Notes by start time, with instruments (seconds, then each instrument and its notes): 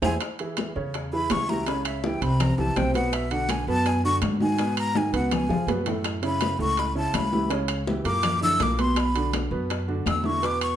0.02 upright bass E2, upright piano E4 G#4 C5, flute G#5, low bongo, high conga, high timbale, claves
0.21 high bongo, high conga, high timbale, claves
0.39 upright piano E3 E4 G#4, high conga, high timbale
0.57 high bongo, high conga, high timbale, claves
0.76 upright bass E2, upright piano C#3 C#4 C#5
0.94 high bongo, high conga, high timbale
1.13 upright piano E3 E4 G#4, flute B5, high conga
1.30 upright bass C#2, flute C#6, high bongo, low bongo, high conga, high timbale, low timbale, claves
1.49 upright piano E3 E4 G4, flute A#5, high conga
1.67 upright piano C#3 C#4 C#5, flute B5, high bongo, high conga, high timbale
1.85 flute E5, high conga, high timbale, claves
2.04 upright piano E3 E4 G4, flute G5, high bongo, high conga
2.21 upright bass C2, upright piano C3 C4 C5, flute B5, high bongo, high conga, high timbale
2.40 flute A#5, high bongo, high conga, low conga, high timbale, claves
2.58 upright bass C2, upright piano E3 E4 G4, flute A5, high bongo, high conga, low conga
2.76 upright bass B1, upright piano C3 C4 C5, flute G5, high bongo, low bongo, high conga, high timbale
2.94 upright piano B2 B3 B4, flute F#5, high bongo, high conga, high timbale
3.13 flute E5, high bongo, high conga, high timbale, claves
3.31 upright piano D3 D4 F#4, flute F#5, high conga, high timbale
3.49 flute G#5, high bongo, high conga, high timbale, claves
3.67 upright bass F#2, upright piano B2 B3 B4, flute A5
3.86 flute G#5, high bongo, high conga, high timbale
4.04 upright piano D3 D4 F#4, flute C#6, high conga
4.22 upright bass G#2, high bongo, low bongo, high conga, high timbale, claves
4.40 upright piano D#3 D#4 F#4, flute G#5, high conga
4.58 upright piano B2 B3 B4, high bongo, high timbale
4.77 flute A#5, high conga, high timbale, claves
4.94 upright piano D#3 D#4 F#4, flute G#5, high bongo, high conga
5.13 upright bass C#2, upright piano B2 B3 B4, flute F#5, high conga, high timbale
5.31 flute G#5, high bongo, high conga, low conga, high timbale, claves
5.49 upright bass F2, upright piano F3 F4 G#4, low bongo, high conga, low conga
5.67 upright bass F#2, upright piano B2 B3 B4, high conga, high timbale, low timbale
5.86 upright piano A2 A3 A4, low bongo, high timbale
6.04 high bongo, high conga, high timbale, claves
6.22 upright piano C#3 C#4 E4, flute B5, high conga, high timbale
6.41 high bongo, high conga, high timbale, claves
6.59 upright bass C#2, upright piano A2 A3 A4, flute C#6
6.77 flute B5, high bongo, high conga, high timbale
6.95 upright piano C#3 C#4 E4, flute A5, high conga
7.14 upright bass C#2, flute B5, high bongo, low bongo, high conga, high timbale, claves
7.32 upright piano E3 E4 G4, high conga
7.50 upright piano C#3 C#4 C#5, high bongo, high conga, high timbale
7.68 high conga, high timbale, claves
7.87 upright piano E3 E4 G4, high bongo, high conga
8.04 upright bass F#2, upright piano A#2 A#3 A#4, flute D6, high bongo, high conga, high timbale
8.23 high bongo, high conga, low conga, high timbale, claves
8.41 upright piano D3 D4 E4, flute E6, high bongo, high conga, low conga
8.60 upright bass B1, upright piano A#2 A#3 A#4, flute D6, high bongo, low bongo, high conga, high timbale
8.78 upright piano B2 B3 B4, flute C6, high bongo, high conga, high timbale
8.96 flute B5, high bongo, high conga, high timbale, claves
9.15 upright piano D3 D4 F#4, high conga, high timbale
9.33 high bongo, high conga, high timbale, claves
9.51 upright bass F#2, upright piano B2 B3 B4
9.70 high bongo, high conga, high timbale
9.88 upright piano D3 D4 F#4, high conga
10.06 upright bass E2, flute E6, high bongo, low bongo, high conga, high timbale, claves
10.23 upright piano D3 D4 E4, flute C#6, high conga
10.42 upright piano B2 B3 B4, flute D6, high bongo, high conga, high timbale
10.61 flute C#6, high conga, high timbale, claves